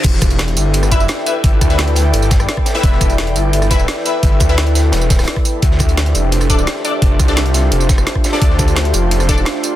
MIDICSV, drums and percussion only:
0, 0, Header, 1, 2, 480
1, 0, Start_track
1, 0, Tempo, 348837
1, 61, Time_signature, 4, 2, 24, 8
1, 13426, End_track
2, 0, Start_track
2, 0, Title_t, "Drums"
2, 50, Note_on_c, 9, 42, 80
2, 60, Note_off_c, 9, 42, 0
2, 60, Note_on_c, 9, 36, 123
2, 60, Note_on_c, 9, 42, 98
2, 60, Note_on_c, 9, 49, 102
2, 193, Note_on_c, 9, 38, 36
2, 197, Note_off_c, 9, 36, 0
2, 198, Note_off_c, 9, 42, 0
2, 198, Note_off_c, 9, 49, 0
2, 290, Note_on_c, 9, 42, 69
2, 300, Note_off_c, 9, 42, 0
2, 300, Note_on_c, 9, 36, 108
2, 300, Note_on_c, 9, 37, 38
2, 300, Note_on_c, 9, 42, 73
2, 300, Note_on_c, 9, 54, 61
2, 331, Note_off_c, 9, 38, 0
2, 416, Note_off_c, 9, 42, 0
2, 416, Note_on_c, 9, 42, 42
2, 420, Note_off_c, 9, 42, 0
2, 420, Note_off_c, 9, 54, 0
2, 420, Note_on_c, 9, 42, 39
2, 420, Note_on_c, 9, 54, 27
2, 437, Note_off_c, 9, 36, 0
2, 438, Note_off_c, 9, 37, 0
2, 529, Note_off_c, 9, 42, 0
2, 529, Note_on_c, 9, 42, 86
2, 531, Note_on_c, 9, 38, 126
2, 539, Note_off_c, 9, 38, 0
2, 539, Note_off_c, 9, 42, 0
2, 539, Note_on_c, 9, 38, 119
2, 539, Note_on_c, 9, 42, 97
2, 558, Note_off_c, 9, 54, 0
2, 660, Note_off_c, 9, 42, 0
2, 660, Note_on_c, 9, 42, 40
2, 677, Note_off_c, 9, 38, 0
2, 780, Note_off_c, 9, 42, 0
2, 780, Note_on_c, 9, 42, 71
2, 780, Note_on_c, 9, 54, 60
2, 793, Note_off_c, 9, 42, 0
2, 793, Note_on_c, 9, 42, 64
2, 918, Note_off_c, 9, 54, 0
2, 930, Note_off_c, 9, 42, 0
2, 1013, Note_on_c, 9, 42, 81
2, 1020, Note_off_c, 9, 42, 0
2, 1020, Note_on_c, 9, 42, 100
2, 1140, Note_off_c, 9, 42, 0
2, 1140, Note_on_c, 9, 37, 35
2, 1140, Note_on_c, 9, 42, 46
2, 1140, Note_on_c, 9, 54, 28
2, 1260, Note_off_c, 9, 42, 0
2, 1260, Note_off_c, 9, 54, 0
2, 1260, Note_on_c, 9, 36, 62
2, 1260, Note_on_c, 9, 42, 72
2, 1260, Note_on_c, 9, 54, 60
2, 1277, Note_off_c, 9, 37, 0
2, 1380, Note_off_c, 9, 54, 0
2, 1380, Note_on_c, 9, 54, 29
2, 1397, Note_off_c, 9, 36, 0
2, 1397, Note_off_c, 9, 42, 0
2, 1491, Note_on_c, 9, 42, 82
2, 1500, Note_off_c, 9, 42, 0
2, 1500, Note_on_c, 9, 38, 123
2, 1500, Note_on_c, 9, 42, 98
2, 1508, Note_off_c, 9, 38, 0
2, 1508, Note_on_c, 9, 38, 123
2, 1517, Note_off_c, 9, 54, 0
2, 1618, Note_off_c, 9, 38, 0
2, 1618, Note_on_c, 9, 38, 45
2, 1637, Note_off_c, 9, 42, 0
2, 1740, Note_on_c, 9, 42, 69
2, 1740, Note_on_c, 9, 54, 60
2, 1742, Note_off_c, 9, 42, 0
2, 1742, Note_on_c, 9, 42, 65
2, 1755, Note_off_c, 9, 38, 0
2, 1878, Note_off_c, 9, 54, 0
2, 1880, Note_off_c, 9, 42, 0
2, 1980, Note_on_c, 9, 36, 122
2, 1980, Note_on_c, 9, 42, 95
2, 1981, Note_off_c, 9, 42, 0
2, 1981, Note_on_c, 9, 42, 90
2, 2117, Note_off_c, 9, 36, 0
2, 2119, Note_off_c, 9, 42, 0
2, 2219, Note_on_c, 9, 42, 70
2, 2220, Note_off_c, 9, 42, 0
2, 2220, Note_on_c, 9, 36, 112
2, 2220, Note_on_c, 9, 37, 39
2, 2220, Note_on_c, 9, 42, 69
2, 2220, Note_on_c, 9, 54, 57
2, 2337, Note_on_c, 9, 38, 50
2, 2340, Note_off_c, 9, 42, 0
2, 2340, Note_off_c, 9, 54, 0
2, 2340, Note_on_c, 9, 42, 38
2, 2340, Note_on_c, 9, 54, 27
2, 2357, Note_off_c, 9, 36, 0
2, 2358, Note_off_c, 9, 37, 0
2, 2453, Note_off_c, 9, 38, 0
2, 2453, Note_on_c, 9, 38, 125
2, 2460, Note_off_c, 9, 38, 0
2, 2460, Note_off_c, 9, 42, 0
2, 2460, Note_on_c, 9, 38, 126
2, 2460, Note_on_c, 9, 42, 94
2, 2470, Note_off_c, 9, 42, 0
2, 2470, Note_on_c, 9, 42, 96
2, 2478, Note_off_c, 9, 54, 0
2, 2581, Note_off_c, 9, 42, 0
2, 2581, Note_on_c, 9, 42, 39
2, 2598, Note_off_c, 9, 38, 0
2, 2693, Note_off_c, 9, 42, 0
2, 2693, Note_on_c, 9, 42, 74
2, 2695, Note_on_c, 9, 38, 54
2, 2700, Note_on_c, 9, 46, 79
2, 2700, Note_on_c, 9, 54, 59
2, 2831, Note_off_c, 9, 42, 0
2, 2832, Note_off_c, 9, 38, 0
2, 2838, Note_off_c, 9, 46, 0
2, 2838, Note_off_c, 9, 54, 0
2, 2937, Note_on_c, 9, 42, 57
2, 2941, Note_off_c, 9, 42, 0
2, 2941, Note_on_c, 9, 42, 97
2, 3060, Note_on_c, 9, 54, 27
2, 3063, Note_off_c, 9, 42, 0
2, 3063, Note_on_c, 9, 42, 42
2, 3175, Note_off_c, 9, 42, 0
2, 3175, Note_on_c, 9, 42, 84
2, 3180, Note_on_c, 9, 36, 107
2, 3181, Note_off_c, 9, 42, 0
2, 3181, Note_off_c, 9, 54, 0
2, 3181, Note_on_c, 9, 38, 96
2, 3181, Note_on_c, 9, 42, 68
2, 3181, Note_on_c, 9, 54, 59
2, 3301, Note_off_c, 9, 54, 0
2, 3301, Note_on_c, 9, 37, 59
2, 3301, Note_on_c, 9, 54, 28
2, 3317, Note_off_c, 9, 36, 0
2, 3318, Note_off_c, 9, 42, 0
2, 3319, Note_off_c, 9, 38, 0
2, 3421, Note_on_c, 9, 38, 124
2, 3421, Note_on_c, 9, 42, 97
2, 3425, Note_off_c, 9, 42, 0
2, 3425, Note_on_c, 9, 42, 57
2, 3438, Note_off_c, 9, 37, 0
2, 3438, Note_off_c, 9, 54, 0
2, 3540, Note_on_c, 9, 36, 66
2, 3541, Note_on_c, 9, 37, 52
2, 3558, Note_off_c, 9, 38, 0
2, 3563, Note_off_c, 9, 42, 0
2, 3656, Note_on_c, 9, 38, 99
2, 3661, Note_on_c, 9, 42, 68
2, 3661, Note_on_c, 9, 54, 58
2, 3677, Note_off_c, 9, 36, 0
2, 3679, Note_off_c, 9, 37, 0
2, 3779, Note_off_c, 9, 42, 0
2, 3779, Note_on_c, 9, 42, 85
2, 3780, Note_off_c, 9, 38, 0
2, 3780, Note_on_c, 9, 38, 99
2, 3799, Note_off_c, 9, 54, 0
2, 3900, Note_on_c, 9, 36, 125
2, 3901, Note_off_c, 9, 42, 0
2, 3901, Note_on_c, 9, 42, 91
2, 3905, Note_off_c, 9, 42, 0
2, 3905, Note_on_c, 9, 42, 93
2, 3917, Note_off_c, 9, 38, 0
2, 4022, Note_on_c, 9, 38, 40
2, 4037, Note_off_c, 9, 36, 0
2, 4042, Note_off_c, 9, 42, 0
2, 4140, Note_on_c, 9, 36, 115
2, 4142, Note_on_c, 9, 37, 39
2, 4142, Note_on_c, 9, 42, 66
2, 4142, Note_on_c, 9, 54, 58
2, 4144, Note_off_c, 9, 42, 0
2, 4144, Note_on_c, 9, 42, 70
2, 4160, Note_off_c, 9, 38, 0
2, 4258, Note_off_c, 9, 42, 0
2, 4258, Note_on_c, 9, 42, 42
2, 4261, Note_off_c, 9, 42, 0
2, 4261, Note_off_c, 9, 54, 0
2, 4261, Note_on_c, 9, 42, 37
2, 4261, Note_on_c, 9, 54, 26
2, 4277, Note_off_c, 9, 36, 0
2, 4279, Note_off_c, 9, 37, 0
2, 4380, Note_on_c, 9, 38, 115
2, 4381, Note_off_c, 9, 38, 0
2, 4381, Note_off_c, 9, 42, 0
2, 4381, Note_on_c, 9, 38, 126
2, 4381, Note_on_c, 9, 42, 92
2, 4387, Note_off_c, 9, 42, 0
2, 4387, Note_on_c, 9, 42, 96
2, 4399, Note_off_c, 9, 54, 0
2, 4500, Note_off_c, 9, 42, 0
2, 4500, Note_on_c, 9, 42, 37
2, 4519, Note_off_c, 9, 38, 0
2, 4620, Note_off_c, 9, 42, 0
2, 4620, Note_on_c, 9, 42, 67
2, 4620, Note_on_c, 9, 54, 58
2, 4758, Note_off_c, 9, 42, 0
2, 4758, Note_off_c, 9, 54, 0
2, 4860, Note_on_c, 9, 42, 92
2, 4865, Note_off_c, 9, 42, 0
2, 4865, Note_on_c, 9, 42, 81
2, 4981, Note_on_c, 9, 37, 34
2, 4981, Note_on_c, 9, 54, 27
2, 4984, Note_off_c, 9, 42, 0
2, 4984, Note_on_c, 9, 42, 47
2, 5098, Note_on_c, 9, 38, 45
2, 5100, Note_on_c, 9, 36, 66
2, 5101, Note_off_c, 9, 42, 0
2, 5101, Note_off_c, 9, 54, 0
2, 5101, Note_on_c, 9, 42, 68
2, 5101, Note_on_c, 9, 54, 57
2, 5107, Note_off_c, 9, 42, 0
2, 5107, Note_on_c, 9, 42, 77
2, 5118, Note_off_c, 9, 37, 0
2, 5221, Note_off_c, 9, 54, 0
2, 5221, Note_on_c, 9, 54, 28
2, 5235, Note_off_c, 9, 38, 0
2, 5237, Note_off_c, 9, 36, 0
2, 5244, Note_off_c, 9, 42, 0
2, 5341, Note_on_c, 9, 38, 127
2, 5341, Note_on_c, 9, 42, 93
2, 5344, Note_off_c, 9, 38, 0
2, 5344, Note_on_c, 9, 38, 127
2, 5346, Note_off_c, 9, 42, 0
2, 5346, Note_on_c, 9, 42, 93
2, 5359, Note_off_c, 9, 54, 0
2, 5465, Note_off_c, 9, 38, 0
2, 5465, Note_on_c, 9, 38, 39
2, 5484, Note_off_c, 9, 42, 0
2, 5580, Note_on_c, 9, 42, 62
2, 5580, Note_on_c, 9, 54, 55
2, 5585, Note_off_c, 9, 42, 0
2, 5585, Note_on_c, 9, 42, 71
2, 5602, Note_off_c, 9, 38, 0
2, 5718, Note_off_c, 9, 54, 0
2, 5722, Note_off_c, 9, 42, 0
2, 5820, Note_on_c, 9, 36, 121
2, 5820, Note_on_c, 9, 42, 89
2, 5823, Note_off_c, 9, 42, 0
2, 5823, Note_on_c, 9, 42, 82
2, 5958, Note_off_c, 9, 36, 0
2, 5961, Note_off_c, 9, 42, 0
2, 6052, Note_on_c, 9, 42, 70
2, 6060, Note_on_c, 9, 36, 112
2, 6061, Note_off_c, 9, 42, 0
2, 6061, Note_on_c, 9, 37, 36
2, 6061, Note_on_c, 9, 42, 65
2, 6061, Note_on_c, 9, 54, 60
2, 6177, Note_on_c, 9, 38, 54
2, 6181, Note_off_c, 9, 42, 0
2, 6181, Note_off_c, 9, 54, 0
2, 6181, Note_on_c, 9, 42, 35
2, 6181, Note_on_c, 9, 54, 27
2, 6198, Note_off_c, 9, 36, 0
2, 6198, Note_off_c, 9, 37, 0
2, 6297, Note_off_c, 9, 42, 0
2, 6297, Note_on_c, 9, 42, 88
2, 6301, Note_off_c, 9, 38, 0
2, 6301, Note_off_c, 9, 42, 0
2, 6301, Note_on_c, 9, 38, 121
2, 6301, Note_on_c, 9, 42, 91
2, 6319, Note_off_c, 9, 54, 0
2, 6421, Note_off_c, 9, 42, 0
2, 6421, Note_on_c, 9, 42, 37
2, 6439, Note_off_c, 9, 38, 0
2, 6537, Note_on_c, 9, 38, 61
2, 6540, Note_on_c, 9, 46, 82
2, 6540, Note_on_c, 9, 54, 59
2, 6546, Note_off_c, 9, 42, 0
2, 6546, Note_on_c, 9, 42, 71
2, 6675, Note_off_c, 9, 38, 0
2, 6678, Note_off_c, 9, 46, 0
2, 6678, Note_off_c, 9, 54, 0
2, 6684, Note_off_c, 9, 42, 0
2, 6774, Note_on_c, 9, 38, 97
2, 6780, Note_on_c, 9, 42, 88
2, 6781, Note_off_c, 9, 42, 0
2, 6781, Note_on_c, 9, 42, 83
2, 6901, Note_on_c, 9, 54, 28
2, 6911, Note_off_c, 9, 38, 0
2, 6918, Note_off_c, 9, 42, 0
2, 7020, Note_on_c, 9, 36, 110
2, 7021, Note_off_c, 9, 54, 0
2, 7021, Note_on_c, 9, 42, 65
2, 7021, Note_on_c, 9, 54, 60
2, 7024, Note_on_c, 9, 38, 110
2, 7025, Note_off_c, 9, 42, 0
2, 7025, Note_on_c, 9, 42, 81
2, 7139, Note_off_c, 9, 42, 0
2, 7139, Note_on_c, 9, 42, 69
2, 7141, Note_off_c, 9, 54, 0
2, 7141, Note_on_c, 9, 37, 56
2, 7141, Note_on_c, 9, 54, 28
2, 7143, Note_off_c, 9, 38, 0
2, 7143, Note_on_c, 9, 38, 84
2, 7158, Note_off_c, 9, 36, 0
2, 7207, Note_off_c, 9, 42, 0
2, 7207, Note_on_c, 9, 42, 69
2, 7210, Note_off_c, 9, 38, 0
2, 7210, Note_on_c, 9, 38, 88
2, 7261, Note_off_c, 9, 38, 0
2, 7261, Note_off_c, 9, 42, 0
2, 7261, Note_on_c, 9, 38, 127
2, 7261, Note_on_c, 9, 42, 89
2, 7278, Note_off_c, 9, 37, 0
2, 7278, Note_off_c, 9, 54, 0
2, 7380, Note_on_c, 9, 36, 66
2, 7381, Note_on_c, 9, 37, 50
2, 7384, Note_off_c, 9, 42, 0
2, 7384, Note_on_c, 9, 42, 40
2, 7398, Note_off_c, 9, 38, 0
2, 7501, Note_off_c, 9, 42, 0
2, 7501, Note_on_c, 9, 42, 63
2, 7501, Note_on_c, 9, 54, 57
2, 7504, Note_off_c, 9, 42, 0
2, 7504, Note_on_c, 9, 42, 68
2, 7518, Note_off_c, 9, 36, 0
2, 7518, Note_off_c, 9, 37, 0
2, 7638, Note_off_c, 9, 54, 0
2, 7641, Note_off_c, 9, 42, 0
2, 7738, Note_on_c, 9, 42, 81
2, 7740, Note_on_c, 9, 36, 117
2, 7741, Note_off_c, 9, 42, 0
2, 7741, Note_on_c, 9, 42, 90
2, 7858, Note_on_c, 9, 38, 43
2, 7878, Note_off_c, 9, 36, 0
2, 7879, Note_off_c, 9, 42, 0
2, 7966, Note_on_c, 9, 42, 72
2, 7980, Note_on_c, 9, 36, 108
2, 7981, Note_off_c, 9, 42, 0
2, 7981, Note_on_c, 9, 37, 36
2, 7981, Note_on_c, 9, 42, 67
2, 7981, Note_on_c, 9, 54, 63
2, 7995, Note_off_c, 9, 38, 0
2, 8099, Note_off_c, 9, 42, 0
2, 8099, Note_on_c, 9, 42, 45
2, 8101, Note_off_c, 9, 42, 0
2, 8101, Note_off_c, 9, 54, 0
2, 8101, Note_on_c, 9, 42, 36
2, 8101, Note_on_c, 9, 54, 28
2, 8118, Note_off_c, 9, 36, 0
2, 8119, Note_off_c, 9, 37, 0
2, 8219, Note_on_c, 9, 38, 111
2, 8221, Note_off_c, 9, 38, 0
2, 8221, Note_off_c, 9, 42, 0
2, 8221, Note_on_c, 9, 38, 120
2, 8221, Note_on_c, 9, 42, 92
2, 8226, Note_off_c, 9, 42, 0
2, 8226, Note_on_c, 9, 42, 83
2, 8239, Note_off_c, 9, 54, 0
2, 8341, Note_off_c, 9, 42, 0
2, 8341, Note_on_c, 9, 42, 38
2, 8359, Note_off_c, 9, 38, 0
2, 8457, Note_off_c, 9, 42, 0
2, 8457, Note_on_c, 9, 42, 70
2, 8461, Note_off_c, 9, 42, 0
2, 8461, Note_on_c, 9, 42, 65
2, 8461, Note_on_c, 9, 54, 61
2, 8598, Note_off_c, 9, 42, 0
2, 8598, Note_off_c, 9, 54, 0
2, 8696, Note_on_c, 9, 42, 85
2, 8700, Note_off_c, 9, 42, 0
2, 8700, Note_on_c, 9, 42, 87
2, 8815, Note_off_c, 9, 42, 0
2, 8815, Note_on_c, 9, 42, 45
2, 8821, Note_on_c, 9, 37, 32
2, 8821, Note_on_c, 9, 54, 28
2, 8940, Note_off_c, 9, 42, 0
2, 8940, Note_off_c, 9, 54, 0
2, 8940, Note_on_c, 9, 36, 60
2, 8940, Note_on_c, 9, 42, 64
2, 8940, Note_on_c, 9, 54, 61
2, 8958, Note_off_c, 9, 37, 0
2, 9061, Note_off_c, 9, 54, 0
2, 9061, Note_on_c, 9, 54, 29
2, 9077, Note_off_c, 9, 36, 0
2, 9078, Note_off_c, 9, 42, 0
2, 9177, Note_on_c, 9, 42, 92
2, 9179, Note_on_c, 9, 38, 121
2, 9181, Note_off_c, 9, 38, 0
2, 9181, Note_off_c, 9, 42, 0
2, 9181, Note_on_c, 9, 38, 125
2, 9181, Note_on_c, 9, 42, 93
2, 9198, Note_off_c, 9, 54, 0
2, 9304, Note_off_c, 9, 38, 0
2, 9304, Note_on_c, 9, 38, 45
2, 9318, Note_off_c, 9, 42, 0
2, 9420, Note_on_c, 9, 42, 63
2, 9420, Note_on_c, 9, 54, 58
2, 9424, Note_off_c, 9, 42, 0
2, 9424, Note_on_c, 9, 42, 69
2, 9441, Note_off_c, 9, 38, 0
2, 9558, Note_off_c, 9, 54, 0
2, 9562, Note_off_c, 9, 42, 0
2, 9660, Note_on_c, 9, 36, 115
2, 9660, Note_on_c, 9, 42, 92
2, 9669, Note_off_c, 9, 42, 0
2, 9669, Note_on_c, 9, 42, 84
2, 9797, Note_off_c, 9, 36, 0
2, 9807, Note_off_c, 9, 42, 0
2, 9900, Note_on_c, 9, 36, 102
2, 9900, Note_on_c, 9, 37, 36
2, 9900, Note_on_c, 9, 42, 68
2, 9900, Note_on_c, 9, 54, 65
2, 9905, Note_off_c, 9, 42, 0
2, 9905, Note_on_c, 9, 42, 65
2, 10020, Note_off_c, 9, 42, 0
2, 10020, Note_off_c, 9, 54, 0
2, 10020, Note_on_c, 9, 42, 37
2, 10020, Note_on_c, 9, 54, 29
2, 10035, Note_on_c, 9, 38, 51
2, 10037, Note_off_c, 9, 36, 0
2, 10038, Note_off_c, 9, 37, 0
2, 10139, Note_off_c, 9, 38, 0
2, 10139, Note_off_c, 9, 42, 0
2, 10139, Note_on_c, 9, 38, 117
2, 10139, Note_on_c, 9, 42, 93
2, 10143, Note_off_c, 9, 42, 0
2, 10143, Note_on_c, 9, 42, 99
2, 10158, Note_off_c, 9, 54, 0
2, 10260, Note_off_c, 9, 42, 0
2, 10260, Note_on_c, 9, 42, 39
2, 10277, Note_off_c, 9, 38, 0
2, 10373, Note_on_c, 9, 38, 63
2, 10379, Note_off_c, 9, 42, 0
2, 10379, Note_on_c, 9, 42, 66
2, 10379, Note_on_c, 9, 46, 81
2, 10379, Note_on_c, 9, 54, 64
2, 10510, Note_off_c, 9, 38, 0
2, 10516, Note_off_c, 9, 42, 0
2, 10517, Note_off_c, 9, 46, 0
2, 10517, Note_off_c, 9, 54, 0
2, 10620, Note_on_c, 9, 42, 94
2, 10625, Note_off_c, 9, 42, 0
2, 10625, Note_on_c, 9, 42, 61
2, 10738, Note_off_c, 9, 42, 0
2, 10738, Note_on_c, 9, 42, 42
2, 10740, Note_on_c, 9, 54, 29
2, 10858, Note_on_c, 9, 38, 100
2, 10860, Note_off_c, 9, 42, 0
2, 10860, Note_off_c, 9, 54, 0
2, 10860, Note_on_c, 9, 36, 102
2, 10860, Note_on_c, 9, 42, 65
2, 10860, Note_on_c, 9, 54, 65
2, 10861, Note_off_c, 9, 42, 0
2, 10861, Note_on_c, 9, 42, 73
2, 10980, Note_off_c, 9, 54, 0
2, 10980, Note_on_c, 9, 37, 55
2, 10980, Note_on_c, 9, 54, 30
2, 10996, Note_off_c, 9, 38, 0
2, 10997, Note_off_c, 9, 36, 0
2, 10999, Note_off_c, 9, 42, 0
2, 11100, Note_on_c, 9, 38, 120
2, 11100, Note_on_c, 9, 42, 96
2, 11103, Note_off_c, 9, 42, 0
2, 11103, Note_on_c, 9, 42, 59
2, 11118, Note_off_c, 9, 37, 0
2, 11118, Note_off_c, 9, 54, 0
2, 11220, Note_on_c, 9, 36, 61
2, 11220, Note_on_c, 9, 37, 47
2, 11238, Note_off_c, 9, 38, 0
2, 11241, Note_off_c, 9, 42, 0
2, 11337, Note_on_c, 9, 42, 85
2, 11340, Note_off_c, 9, 42, 0
2, 11340, Note_on_c, 9, 42, 66
2, 11340, Note_on_c, 9, 54, 62
2, 11348, Note_on_c, 9, 38, 115
2, 11357, Note_off_c, 9, 36, 0
2, 11358, Note_off_c, 9, 37, 0
2, 11460, Note_off_c, 9, 38, 0
2, 11460, Note_on_c, 9, 38, 97
2, 11461, Note_off_c, 9, 42, 0
2, 11461, Note_on_c, 9, 42, 77
2, 11478, Note_off_c, 9, 54, 0
2, 11580, Note_off_c, 9, 42, 0
2, 11580, Note_on_c, 9, 36, 115
2, 11580, Note_on_c, 9, 42, 94
2, 11587, Note_off_c, 9, 42, 0
2, 11587, Note_on_c, 9, 42, 83
2, 11597, Note_off_c, 9, 38, 0
2, 11699, Note_on_c, 9, 38, 36
2, 11717, Note_off_c, 9, 36, 0
2, 11725, Note_off_c, 9, 42, 0
2, 11816, Note_on_c, 9, 42, 74
2, 11820, Note_off_c, 9, 42, 0
2, 11820, Note_on_c, 9, 36, 102
2, 11820, Note_on_c, 9, 37, 36
2, 11820, Note_on_c, 9, 42, 70
2, 11820, Note_on_c, 9, 54, 64
2, 11837, Note_off_c, 9, 38, 0
2, 11940, Note_off_c, 9, 42, 0
2, 11940, Note_off_c, 9, 54, 0
2, 11940, Note_on_c, 9, 42, 38
2, 11940, Note_on_c, 9, 54, 29
2, 11944, Note_off_c, 9, 42, 0
2, 11944, Note_on_c, 9, 42, 47
2, 11957, Note_off_c, 9, 36, 0
2, 11958, Note_off_c, 9, 37, 0
2, 12049, Note_on_c, 9, 38, 121
2, 12060, Note_off_c, 9, 38, 0
2, 12060, Note_off_c, 9, 42, 0
2, 12060, Note_on_c, 9, 38, 114
2, 12060, Note_on_c, 9, 42, 95
2, 12061, Note_off_c, 9, 42, 0
2, 12061, Note_on_c, 9, 42, 96
2, 12078, Note_off_c, 9, 54, 0
2, 12180, Note_off_c, 9, 42, 0
2, 12180, Note_on_c, 9, 42, 39
2, 12198, Note_off_c, 9, 38, 0
2, 12295, Note_off_c, 9, 42, 0
2, 12295, Note_on_c, 9, 42, 68
2, 12300, Note_off_c, 9, 42, 0
2, 12300, Note_on_c, 9, 42, 71
2, 12300, Note_on_c, 9, 54, 64
2, 12437, Note_off_c, 9, 42, 0
2, 12437, Note_off_c, 9, 54, 0
2, 12540, Note_on_c, 9, 42, 97
2, 12542, Note_off_c, 9, 42, 0
2, 12542, Note_on_c, 9, 42, 81
2, 12660, Note_on_c, 9, 37, 32
2, 12660, Note_on_c, 9, 54, 29
2, 12664, Note_off_c, 9, 42, 0
2, 12664, Note_on_c, 9, 42, 42
2, 12774, Note_on_c, 9, 38, 50
2, 12779, Note_off_c, 9, 42, 0
2, 12779, Note_on_c, 9, 42, 70
2, 12780, Note_off_c, 9, 42, 0
2, 12780, Note_off_c, 9, 54, 0
2, 12780, Note_on_c, 9, 36, 59
2, 12780, Note_on_c, 9, 42, 70
2, 12780, Note_on_c, 9, 54, 64
2, 12798, Note_off_c, 9, 37, 0
2, 12900, Note_off_c, 9, 54, 0
2, 12900, Note_on_c, 9, 54, 30
2, 12912, Note_off_c, 9, 38, 0
2, 12917, Note_off_c, 9, 36, 0
2, 12918, Note_off_c, 9, 42, 0
2, 13009, Note_on_c, 9, 38, 127
2, 13020, Note_off_c, 9, 38, 0
2, 13020, Note_on_c, 9, 38, 117
2, 13020, Note_on_c, 9, 42, 97
2, 13021, Note_off_c, 9, 42, 0
2, 13021, Note_on_c, 9, 42, 90
2, 13038, Note_off_c, 9, 54, 0
2, 13140, Note_off_c, 9, 38, 0
2, 13140, Note_on_c, 9, 38, 42
2, 13158, Note_off_c, 9, 42, 0
2, 13255, Note_on_c, 9, 42, 70
2, 13260, Note_off_c, 9, 42, 0
2, 13260, Note_on_c, 9, 42, 68
2, 13260, Note_on_c, 9, 54, 62
2, 13277, Note_off_c, 9, 38, 0
2, 13397, Note_off_c, 9, 42, 0
2, 13397, Note_off_c, 9, 54, 0
2, 13426, End_track
0, 0, End_of_file